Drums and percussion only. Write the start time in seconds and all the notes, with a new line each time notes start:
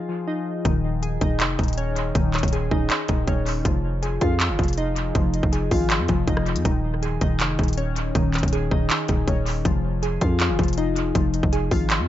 0.65 kick, closed hi-hat
1.03 closed hi-hat
1.21 kick, closed hi-hat
1.40 clap, closed hi-hat
1.59 kick, closed hi-hat
1.64 closed hi-hat
1.68 closed hi-hat
1.73 closed hi-hat
1.78 closed hi-hat
1.96 closed hi-hat
2.15 kick, closed hi-hat
2.34 clap, closed hi-hat
2.39 closed hi-hat
2.43 kick, closed hi-hat
2.48 closed hi-hat
2.53 closed hi-hat
2.71 kick
2.90 clap, closed hi-hat
3.08 kick, closed hi-hat
3.28 kick, closed hi-hat
3.46 open hi-hat
3.65 kick, closed hi-hat
4.03 closed hi-hat
4.21 kick, closed hi-hat
4.40 clap, closed hi-hat
4.59 kick, closed hi-hat
4.64 closed hi-hat
4.68 closed hi-hat
4.73 closed hi-hat
4.78 closed hi-hat
4.96 closed hi-hat
5.15 kick, closed hi-hat
5.34 closed hi-hat
5.43 kick
5.53 closed hi-hat
5.71 kick, open hi-hat
5.90 clap, closed hi-hat
6.08 kick, closed hi-hat
6.28 kick, closed hi-hat
6.37 cross-stick
6.46 closed hi-hat
6.56 closed hi-hat
6.65 kick, closed hi-hat
7.03 closed hi-hat
7.21 kick, closed hi-hat
7.40 clap, closed hi-hat
7.59 kick, closed hi-hat
7.64 closed hi-hat
7.68 closed hi-hat
7.73 closed hi-hat
7.78 closed hi-hat
7.96 closed hi-hat
8.15 kick, closed hi-hat
8.34 clap, closed hi-hat
8.39 closed hi-hat
8.43 kick, closed hi-hat
8.48 closed hi-hat
8.53 closed hi-hat
8.71 kick
8.90 clap, closed hi-hat
9.08 kick, closed hi-hat
9.28 kick, closed hi-hat
9.46 open hi-hat
9.65 kick, closed hi-hat
10.03 closed hi-hat
10.21 kick, closed hi-hat
10.40 clap, closed hi-hat
10.59 kick, closed hi-hat
10.64 closed hi-hat
10.68 closed hi-hat
10.73 closed hi-hat
10.78 closed hi-hat
10.96 closed hi-hat
11.15 kick, closed hi-hat
11.34 closed hi-hat
11.43 kick
11.53 closed hi-hat
11.71 kick, open hi-hat
11.90 clap, closed hi-hat